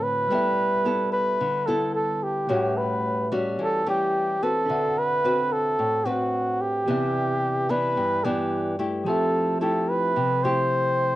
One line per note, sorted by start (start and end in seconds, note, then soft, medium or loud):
0.00 0.28 A2 medium
0.00 0.25 D3 soft
0.00 0.26 C4 medium
0.00 0.26 F#4 soft
0.00 0.26 F#4 medium
0.00 0.26 A4 soft
0.00 0.27 B4 soft
0.00 0.27 B4 medium
0.00 1.12 B4 loud
0.00 0.28 E5 soft
0.28 2.44 G3 soft
0.28 1.37 G3 medium
0.28 0.81 B3 medium
0.28 0.81 E4 medium
0.28 2.45 A4 soft
0.28 0.81 A4 medium
0.28 2.46 B4 soft
0.32 2.46 D5 soft
0.32 2.47 E5 medium
0.85 1.39 B3 medium
0.85 1.40 E4 soft
0.85 1.40 A4 medium
1.13 1.68 B4 loud
1.41 2.47 D3 medium
1.66 2.45 B3 medium
1.66 2.45 E4 medium
1.66 1.94 A4 medium
1.66 2.46 A4 medium
1.95 2.25 A4 medium
2.23 2.79 G4 medium
2.47 3.56 A2 medium
2.47 3.27 G3 medium
2.47 4.63 A3 soft
2.47 3.27 C#4 medium
2.47 3.27 F#4 medium
2.47 4.64 B4 soft
2.47 4.65 C#5 soft
2.52 4.66 E5 soft
2.52 4.66 F#5 medium
2.77 3.32 B4 medium
3.32 3.82 G3 medium
3.32 3.82 C#4 medium
3.32 3.82 F#4 medium
3.59 4.66 E3 medium
3.59 3.86 A4 loud
3.87 4.37 G3 medium
3.87 4.37 C#4 medium
3.87 4.45 G4 medium
4.43 5.20 C4 medium
4.43 5.19 F#4 medium
4.43 5.00 A4 medium
4.43 5.20 B4 medium
4.66 5.76 D3 medium
4.66 6.82 D4 soft
4.66 6.82 A4 soft
4.66 6.83 B4 soft
4.70 6.84 E5 soft
4.70 6.85 F#5 soft
4.99 5.54 B4 loud
5.24 6.01 C4 medium
5.24 6.02 F#4 medium
5.24 6.02 B4 medium
5.52 6.08 A4 loud
5.79 6.85 A2 medium
6.05 6.83 C4 medium
6.05 6.83 F#4 medium
6.05 6.63 F#4 medium
6.05 6.83 B4 medium
6.61 7.72 G4 medium
6.86 7.94 C3 medium
6.86 7.65 E3 medium
6.86 7.65 B3 medium
6.86 7.66 D4 medium
6.86 9.02 G4 soft
6.86 9.02 B4 soft
6.86 9.03 D5 soft
6.91 9.04 E5 soft
7.69 8.20 E3 medium
7.69 8.20 B3 medium
7.69 8.20 D4 medium
7.69 8.26 B4 loud
7.97 9.04 G2 medium
8.24 8.75 E3 medium
8.24 8.75 B3 medium
8.24 8.75 D4 medium
8.24 8.79 G4 medium
8.79 9.57 A3 medium
8.79 9.57 E4 soft
8.79 9.57 G4 medium
9.04 11.16 F3 soft
9.04 10.13 F3 medium
9.04 11.16 G4 soft
9.04 11.16 A4 soft
9.04 9.57 A4 medium
9.08 11.16 C4 soft
9.08 11.16 E5 medium
9.61 10.15 A3 medium
9.61 10.16 E4 medium
9.61 10.16 G4 medium
9.61 9.90 A4 medium
9.89 10.45 B4 medium
10.16 11.16 C3 medium
10.43 11.16 A3 medium
10.43 11.16 E4 medium
10.43 11.16 G4 medium
10.43 11.16 C5 loud